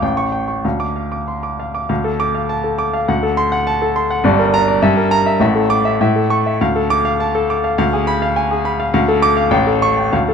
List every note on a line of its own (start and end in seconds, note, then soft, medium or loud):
0.02 0.62 A1 medium
0.02 0.27 G5 medium
0.17 0.42 C#6 medium
0.32 0.57 G5 medium
0.48 0.64 C#6 medium
0.65 1.86 D2 medium
0.65 0.90 F5 medium
0.80 1.05 D6 medium
0.96 1.21 F5 soft
1.12 1.37 D6 medium
1.28 1.43 C6 soft
1.43 1.68 D6 medium
1.60 1.84 F5 medium
1.75 1.90 D6 medium
1.89 3.04 D2 medium
1.89 2.14 F5 medium
2.04 2.29 A4 medium
2.20 2.44 D6 medium
2.35 2.58 F5 medium
2.49 2.73 A5 medium
2.64 2.87 A4 medium
2.79 3.02 D6 medium
2.94 3.08 F5 medium
3.08 4.20 D2 medium
3.08 3.31 F#5 medium
3.23 3.46 A4 medium
3.37 3.60 C6 medium
3.52 3.75 F#5 medium
3.67 3.89 A5 medium
3.82 4.04 A4 medium
3.96 4.18 C6 medium
4.11 4.24 F#5 medium
4.24 4.79 G1 medium
4.24 4.80 G2 loud
4.24 4.47 D5 medium
4.39 4.61 A#4 medium
4.54 4.76 A#5 loud
4.68 4.82 D5 medium
4.82 5.38 G2 loud
4.82 5.05 E5 medium
4.97 5.19 A#4 medium
5.11 5.34 A#5 loud
5.26 5.39 E5 medium
5.40 5.98 A1 medium
5.40 5.98 A2 medium
5.40 5.64 E5 medium
5.55 5.79 A4 medium
5.70 5.94 D6 loud
5.85 5.99 E5 medium
6.01 6.58 A2 medium
6.01 6.24 E5 medium
6.16 6.39 A4 medium
6.30 6.54 C#6 medium
6.46 6.60 E5 medium
6.61 7.76 D2 medium
6.61 6.84 F5 medium
6.76 6.99 A4 medium
6.90 7.14 D6 loud
7.05 7.29 F5 medium
7.20 7.44 A5 medium
7.35 7.58 A4 medium
7.50 7.73 D6 medium
7.64 7.77 F5 medium
7.78 8.89 D2 medium
7.78 8.02 F5 medium
7.93 8.16 G#4 medium
8.07 8.30 B5 loud
8.22 8.45 F5 medium
8.36 8.59 G#5 medium
8.51 8.73 G#4 medium
8.65 8.87 B5 medium
8.80 8.92 F5 medium
8.94 9.50 D2 medium
8.94 9.16 F5 medium
9.08 9.31 A4 medium
9.22 9.46 D6 loud
9.37 9.51 F5 medium
9.51 10.11 A1 loud
9.51 9.75 G5 medium
9.67 9.91 A4 medium
9.82 10.07 C#6 loud
9.97 10.13 G5 medium
10.13 10.34 D2 medium
10.13 10.34 F5 medium
10.28 10.34 A4 medium